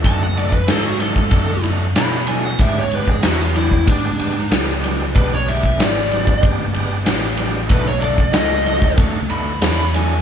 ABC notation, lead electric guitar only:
X:1
M:4/4
L:1/16
Q:1/4=94
K:E
V:1 name="Lead electric guitar"
a f =d B A F A4 z2 b2 g f | e c B G F ^E =E2 =D4 z4 | B c e2 =d4 z8 | B c =d2 ^d4 z2 b4 g2 |]